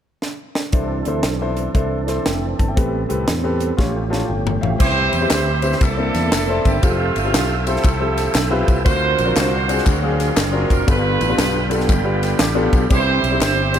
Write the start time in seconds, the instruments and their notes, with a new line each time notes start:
0.22 snare
0.55 snare
0.72 fingered electric bass C2, grand piano C3 D4 E4 A4 C5, tonewheel organ E3 C4 D4 A4, kick, closed hi-hat
1.05 fingered electric bass D2, grand piano D4 E4 A4 C5, closed hi-hat
1.23 fingered electric bass B1, snare, closed hi-hat
1.41 grand piano D4 E4 A4 C5
1.57 closed hi-hat
1.74 fingered electric bass C2, grand piano D4 E4 A4 C5, kick, closed hi-hat
2.07 grand piano D4 E4 A4 C5, snare, closed hi-hat
2.26 fingered electric bass F1, grand piano G5, snare, closed hi-hat
2.59 fingered electric bass G1, grand piano A5, kick, closed hi-hat
2.68 grand piano E5 G5
2.76 fingered electric bass A1, grand piano A2 C4 G4 A4 B4, tonewheel organ G3 B3, kick, closed hi-hat
3.09 fingered electric bass C2, grand piano C4 G4 A4 B4, closed hi-hat
3.28 fingered electric bass E2, snare, closed hi-hat
3.43 grand piano C4 G4 A4 B4
3.60 closed hi-hat
3.77 fingered electric bass A1, grand piano A2 F4 G4 A4 C#5, tonewheel organ F3 A3 C#4 G4, kick, snare
4.10 grand piano F4 G4 A4 C#5 A5, snare
4.28 fingered electric bass G1, grand piano A4 C#5 G5
4.47 floor tom
4.61 fingered electric bass A1, grand piano C#5 E5 F5, floor tom
4.71 grand piano E5 G5
4.79 fingered electric bass C2, grand piano C3 C4 E4 G4 B4 C5, horn section E4 G4 C5, tonewheel organ G4 C5 E5 B5, kick, crash, tambourine
5.13 fingered electric bass E2, ride, tambourine
5.21 grand piano C4 E4 G4 B4 C5
5.30 fingered electric bass D2, horn section E4 G4 C5, snare, clap, ride, tambourine
5.62 grand piano C4 E4 G4 B4 C5, ride, tambourine
5.72 snare
5.81 fingered electric bass C2, grand piano C3, tonewheel organ A#3 A5 D6, horn section D4 E4 A4, kick, clap, ride, tambourine
5.97 grand piano A#3 C4 D4 E4 A4
6.14 fingered electric bass E2, snare, ride, tambourine
6.32 fingered electric bass F1, snare, clap, ride, tambourine
6.48 grand piano C4 D4 E4 A4 C5
6.64 fingered electric bass G1, horn section G4, kick, ride, tambourine
6.82 fingered electric bass F1, horn section A3 C4 F4, grand piano C4 E4 F4 G4 A4, tonewheel organ A4 E5 G5 E6, kick, ride, tambourine
7.16 fingered electric bass G1, ride, tambourine
7.24 grand piano C4 E4 F4 G4 C5
7.33 fingered electric bass B1, snare, clap, ride, tambourine
7.66 grand piano C4 E4 F4 G4 C5, horn section C4 E4 A4, ride, tambourine
7.76 snare
7.84 fingered electric bass C2, kick, clap, ride, tambourine
8.00 grand piano F3 C4 E4 G4 A4
8.18 snare, ride, tambourine
8.35 fingered electric bass B1, snare, clap, ride, tambourine
8.50 grand piano C4 E4 F4 G4 B4
8.68 fingered electric bass C2, kick, ride, tambourine
8.84 fingered electric bass D2, grand piano D3 C4 D4 F4 F#4 A#4, horn section F4 F#4 C5, tonewheel organ A#4 D5 F5 C6, kick, ride, tambourine
9.18 fingered electric bass A#1, ride, tambourine
9.25 grand piano C4 D4 F4 F#4 A#4
9.36 fingered electric bass C2, horn section F4 F#4 C5, snare, clap, ride, tambourine
9.68 grand piano C4 D4 F4 F#4 G#4, ride, tambourine
9.78 snare
9.86 fingered electric bass D2, horn section C4 F4 G#4, kick, clap, ride, tambourine
10.02 grand piano F#3 C4 D4 G#4 F5
10.20 snare, ride, tambourine
10.37 fingered electric bass F#1, snare, clap, ride, tambourine
10.52 grand piano C4 D4 F4 F#4 A#4
10.70 fingered electric bass F1, horn section A#4, kick, ride, tambourine
10.86 fingered electric bass G1, grand piano G2 B3 D4 F4 G4 A4, horn section D4 F4 B4, tonewheel organ A4 F5 G5 B5, kick, ride, tambourine
11.21 fingered electric bass A1, ride, tambourine
11.28 grand piano B3 D4 F4 G4 B4
11.38 fingered electric bass B1, snare, clap, ride, tambourine
11.70 grand piano B3 D4 F4 G4 A4, horn section B3 D4 G4, ride, tambourine
11.80 snare
11.89 fingered electric bass G1, kick, clap, ride, tambourine
12.04 grand piano B3 D4 F4 G4 B4
12.23 snare, ride, tambourine
12.39 fingered electric bass A1, grand piano D6, snare, clap, ride, tambourine
12.55 grand piano B3 D4 F4 G4 A4
12.73 fingered electric bass B1, kick, ride, tambourine
12.89 fingered electric bass C2, grand piano C3 C4 D4 E4 G4 B4, tonewheel organ C4 E5 D6, horn section E4 G4 C5, kick, ride, tambourine
13.23 fingered electric bass B1, ride, tambourine
13.31 grand piano C4 D4 E4 G4 C5
13.41 fingered electric bass G1, horn section E4 G4 C5, snare, clap, ride, tambourine
13.73 grand piano C4 D4 E4 G4 C5, ride, tambourine